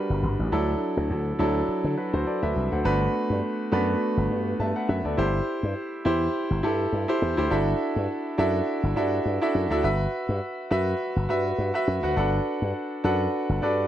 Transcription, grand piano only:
0.00 0.53 G3 medium
0.00 0.52 D4 medium
0.00 0.54 F#4 medium
0.00 0.53 A4 medium
0.00 0.53 A#4 medium
0.00 0.53 B4 medium
0.52 1.30 F#3 medium
0.52 1.31 D4 medium
0.52 1.31 E4 medium
0.52 1.31 A4 medium
1.39 2.04 F#3 medium
1.39 2.05 D4 medium
1.39 2.05 E4 medium
1.39 1.98 A4 medium
1.97 2.13 F#4 medium
1.97 2.13 B4 medium
2.13 2.26 F#4 medium
2.13 2.26 C5 medium
2.27 2.42 A4 medium
2.27 2.42 D5 medium
2.43 2.70 B4 medium
2.43 2.70 E5 medium
2.72 3.00 C5 medium
2.72 2.99 F#5 medium
2.84 3.63 A3 medium
2.84 3.63 B3 medium
2.84 3.64 D4 medium
2.84 3.64 F#4 medium
2.84 3.64 B4 medium
3.72 4.24 A3 medium
3.72 4.25 B3 medium
3.72 4.25 D4 medium
3.72 4.25 F#4 medium
3.72 4.25 B4 medium
4.60 4.75 E5 medium
4.60 4.75 A5 medium
4.76 4.88 B4 medium
4.76 4.88 F#5 medium
4.89 5.04 B4 medium
4.89 5.04 E5 medium
5.05 5.33 A4 medium
5.05 5.32 D5 medium
5.17 5.96 E4 medium
5.17 5.97 G4 medium
5.17 5.97 C5 medium
6.05 6.58 E4 medium
6.05 6.58 G4 medium
6.05 6.58 C5 loud
6.63 7.03 E4 medium
6.63 7.03 G4 medium
6.63 7.04 A4 medium
7.08 7.34 E4 medium
7.08 7.34 G4 medium
7.08 7.35 C5 loud
7.37 7.49 E4 medium
7.37 7.49 G4 medium
7.37 7.50 C5 loud
7.50 8.29 D4 medium
7.50 8.29 E4 medium
7.50 8.30 F#4 medium
7.50 8.30 A4 medium
7.50 8.30 E5 medium
8.38 8.90 D4 medium
8.38 8.91 E4 medium
8.38 8.91 F#4 medium
8.38 8.91 A4 medium
8.38 8.91 E5 loud
8.96 9.36 D4 medium
8.96 9.36 E4 medium
8.96 9.36 F#4 medium
8.96 9.36 A4 medium
8.96 9.37 E5 medium
9.41 9.67 D4 medium
9.41 9.67 E4 medium
9.41 9.67 F#4 medium
9.41 9.68 A4 medium
9.41 9.68 E5 loud
9.70 9.82 D4 medium
9.70 9.82 E4 medium
9.70 9.82 F#4 medium
9.70 9.83 A4 medium
9.70 9.83 E5 loud
9.83 10.62 F#4 medium
9.83 10.63 B4 medium
9.83 10.63 E5 loud
10.71 11.23 F#4 medium
10.71 11.24 B4 medium
10.71 11.24 E5 loud
11.29 11.69 F#4 medium
11.29 11.69 B4 medium
11.29 11.70 E5 medium
11.74 12.00 F#4 medium
11.74 12.00 B4 medium
11.74 12.01 E5 loud
12.03 12.15 F#4 medium
12.03 12.15 B4 medium
12.03 12.16 F#5 medium
12.16 12.95 D4 medium
12.16 12.96 F#4 medium
12.16 12.96 A4 medium
12.16 12.96 B4 medium
12.16 12.96 F#5 medium
13.04 13.57 D4 medium
13.04 13.57 F#4 medium
13.04 13.57 A4 medium
13.04 13.57 B4 medium
13.04 13.57 F#5 medium
13.62 13.88 D4 medium
13.62 13.88 F#4 medium
13.62 13.88 A4 medium
13.62 13.88 B4 medium
13.62 13.88 D5 medium

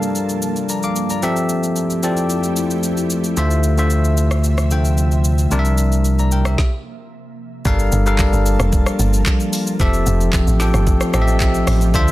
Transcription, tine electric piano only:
0.00 1.25 G3 loud
0.00 1.25 D4 medium
0.00 1.24 A4 loud
0.00 1.24 A#4 medium
0.00 0.84 F5 loud
0.70 0.83 D5 medium
0.70 0.83 A#5 medium
0.84 1.09 F5 medium
0.84 1.09 D6 medium
1.11 1.36 D5 medium
1.11 1.36 A#5 medium
1.23 1.87 F3 loud
1.23 1.88 C4 medium
1.23 1.88 G4 medium
1.23 1.88 A4 medium
1.23 1.88 E5 loud
2.03 2.89 F3 medium
2.03 2.89 C4 medium
2.03 2.89 G4 medium
2.03 2.89 A4 medium
2.03 2.90 D5 medium
3.37 3.69 D3 loud
3.37 3.69 A3 medium
3.37 3.70 F4 medium
3.37 3.70 C5 medium
3.37 3.70 E5 loud
3.78 4.52 D3 medium
3.78 4.53 A3 medium
3.78 4.53 F4 medium
3.78 4.53 C5 medium
3.78 4.53 E5 medium
4.71 5.36 D3 medium
4.71 5.36 A3 medium
4.71 5.36 F4 medium
4.71 5.36 C5 medium
4.71 5.36 G5 medium
5.51 6.16 C3 loud
5.51 6.16 G3 medium
5.51 6.16 D4 medium
5.51 6.05 A#4 loud
5.51 5.59 D5 medium
5.59 6.09 E5 loud
6.19 6.32 D5 medium
6.19 6.31 A#5 medium
6.32 6.45 A#4 medium
6.32 6.45 G5 medium
6.46 6.72 G4 medium
6.46 6.71 E5 medium
7.66 7.98 G3 loud
7.66 7.98 D4 loud
7.66 7.98 A4 loud
7.66 7.98 A#4 loud
7.66 7.99 F5 loud
8.06 8.92 G3 medium
8.06 8.92 D4 medium
8.06 8.92 A4 medium
8.06 8.92 A#4 medium
8.06 8.92 F5 medium
9.80 10.44 F3 loud
9.80 10.45 C4 loud
9.80 10.45 G4 loud
9.80 10.45 A4 loud
9.80 10.45 E5 loud
10.60 11.03 F3 medium
10.60 11.04 C4 medium
10.60 11.04 G4 medium
10.60 11.04 A4 medium
10.60 11.04 G5 loud
11.14 11.78 F3 medium
11.14 11.79 C4 medium
11.14 11.79 G4 medium
11.14 11.79 A4 medium
11.14 11.21 D#5 medium
11.22 11.40 E5 loud
11.41 11.91 E5 medium
11.94 12.12 D3 loud
11.94 12.12 D4 loud
11.94 12.12 F4 loud
11.94 12.12 C5 loud
11.94 12.12 E5 loud

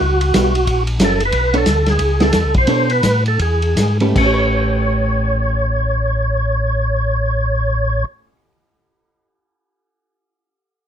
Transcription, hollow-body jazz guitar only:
0.34 0.52 G3 medium
0.34 0.53 B3 medium
0.34 0.53 E4 medium
1.00 1.18 F#3 medium
1.00 1.19 C#4 medium
1.00 1.19 E4 medium
1.00 1.19 A#4 medium
1.54 1.65 B3 medium
1.54 1.65 D4 medium
1.54 1.65 A4 medium
1.54 1.66 C#5 medium
2.21 2.32 B3 medium
2.21 2.32 E4 medium
2.21 2.33 G#4 medium
2.68 2.87 B3 medium
2.68 2.88 D4 medium
2.68 2.88 A4 medium
2.68 2.88 C#5 medium
4.01 4.07 A3 medium
4.01 4.17 C#4 medium
4.01 4.25 G4 medium
4.01 4.33 B4 medium
4.08 8.26 A3 medium
4.18 8.36 C#4 medium
4.26 8.44 G4 medium
4.34 8.52 B4 medium

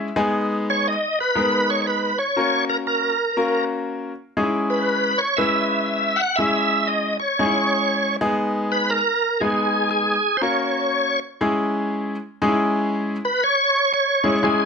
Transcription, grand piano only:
0.00 0.14 E5 medium
0.16 0.92 G#3 loud
0.16 0.92 B3 medium
0.16 0.92 D#4 medium
0.16 0.92 G#4 loud
0.16 0.34 G#5 medium
1.35 2.09 G#3 medium
1.35 2.09 B3 medium
1.35 2.09 D#4 medium
1.35 2.09 A#4 medium
2.36 3.10 A#3 medium
2.36 3.10 C#4 medium
2.36 3.10 F#4 medium
2.36 3.10 A#4 medium
3.37 4.11 A#3 medium
3.37 4.10 C#4 medium
3.37 4.10 F#4 medium
3.37 4.10 A#4 medium
4.37 5.10 G#3 medium
4.37 5.11 C#4 medium
4.37 4.45 D#4 medium
4.37 5.11 G#4 medium
4.43 5.14 E4 medium
5.38 6.11 G#3 medium
5.38 6.11 C#4 medium
5.38 6.12 E4 medium
5.38 6.11 B4 medium
6.39 7.12 G#3 medium
6.39 7.12 C#4 medium
6.39 7.12 E4 medium
6.39 7.12 G#4 medium
7.39 8.13 G#3 medium
7.39 8.12 C#4 medium
7.39 7.47 D#4 medium
7.39 8.13 G#4 medium
7.46 8.16 E4 medium
8.21 8.96 G#3 medium
8.21 8.96 B3 medium
8.21 8.96 D#4 medium
8.21 8.96 G#4 loud
9.41 10.14 G#3 medium
9.41 10.14 B3 medium
9.41 10.14 D#4 medium
9.41 10.14 G#4 medium
10.41 11.15 A#3 medium
10.41 11.14 C#4 medium
10.41 11.15 F#4 medium
10.41 11.15 A#4 medium
11.41 12.15 G#3 medium
11.41 12.15 C#4 medium
11.41 12.14 E4 medium
11.41 12.14 G#4 medium
12.42 13.15 G#3 medium
12.42 13.15 C#4 medium
12.42 12.49 D#4 medium
12.42 13.15 G#4 loud
12.48 13.18 E4 medium
14.24 14.37 G#3 medium
14.24 14.37 C#4 medium
14.24 14.37 E4 medium
14.24 14.37 G#4 medium
14.43 14.65 G#3 medium
14.43 14.65 C#4 medium
14.43 14.65 E4 medium
14.43 14.65 G#4 medium

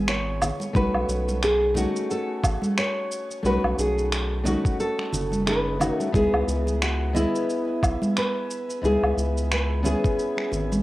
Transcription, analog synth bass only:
0.00 0.51 G#1 loud
0.75 0.89 B1 loud
0.94 1.04 B1 medium
1.08 1.86 B1 medium
2.43 2.57 A1 loud
3.44 3.58 B1 medium
3.64 3.74 B1 medium
3.78 4.56 B1 medium
5.13 5.91 F#1 loud
6.14 6.28 C#2 loud
6.33 6.43 C#2 medium
6.48 7.25 C#2 medium
7.83 7.96 B1 loud
8.83 8.97 C#2 medium
9.03 9.13 C#2 medium
9.17 9.95 C#2 loud
10.52 10.83 G#1 medium

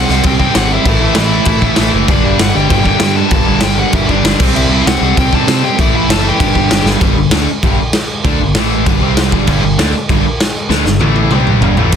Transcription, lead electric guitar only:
0.00 0.23 F#4 medium
0.00 0.26 F#5 medium
0.26 0.31 G4 medium
0.26 0.31 G5 loud
0.40 0.54 G4 medium
0.40 0.56 G5 loud
0.56 0.70 F#4 medium
0.56 0.72 F#5 loud
0.73 0.86 E4 medium
0.73 0.86 E5 loud
0.87 1.15 E4 medium
0.87 1.16 E5 loud
1.17 1.90 E4 medium
1.17 1.90 E5 medium
2.11 2.39 D4 medium
2.11 2.38 D5 loud
2.41 2.55 F#4 medium
2.41 2.55 F#5 medium
2.56 2.84 G4 medium
2.56 2.85 G5 loud
2.86 3.15 G4 medium
2.86 3.15 G5 loud
3.16 3.60 A4 medium
3.16 3.64 A5 loud
3.63 3.78 G4 medium
3.63 3.79 G5 medium
3.79 3.93 F#4 medium
3.79 3.94 F#5 medium
3.95 4.09 E4 medium
3.95 4.11 E5 loud
4.10 4.38 D4 medium
4.10 4.40 D5 medium
4.56 4.85 E4 medium
4.56 4.87 E5 loud
4.87 5.16 F#4 medium
4.87 5.15 F#5 medium
5.18 5.32 G4 medium
5.18 5.33 G5 medium
5.35 5.62 A4 medium
5.35 5.65 A5 loud
5.64 5.79 G4 medium
5.64 5.78 G5 loud
5.80 5.94 E4 medium
5.80 5.94 E5 medium
5.95 6.09 E4 medium
5.95 6.10 E5 medium
6.11 6.25 A4 medium
6.11 6.28 A5 medium
6.28 6.85 G4 medium
6.28 6.88 G5 medium

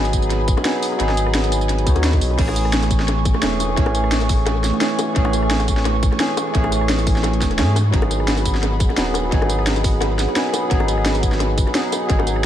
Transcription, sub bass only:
0.00 0.56 G#1 loud
1.00 1.88 G#1 loud
1.87 2.21 D#2 medium
2.21 2.37 B1 medium
2.39 3.33 A1 loud
3.43 3.76 E1 loud
3.77 4.72 A1 loud
5.16 6.10 A1 loud
6.55 7.43 A1 loud
7.42 7.60 E1 medium
7.59 7.92 G#2 medium
7.94 8.88 G#1 loud
8.98 9.31 D#1 medium
9.32 10.27 G#1 loud
10.71 11.65 G#1 loud
12.10 12.46 G#1 loud

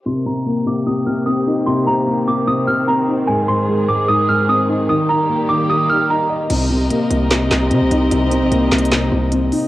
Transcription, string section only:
0.06 6.46 D#3 medium
0.06 3.25 A#3 medium
0.06 4.85 C4 medium
0.06 3.25 G4 medium
3.28 4.88 G#3 medium
3.28 4.88 G#4 medium
4.89 6.49 G3 medium
4.89 6.49 A#3 medium
4.89 6.49 G4 medium
6.50 9.68 C4 medium
6.50 9.68 G4 medium
6.50 9.68 A#4 medium
6.50 9.68 D#5 medium

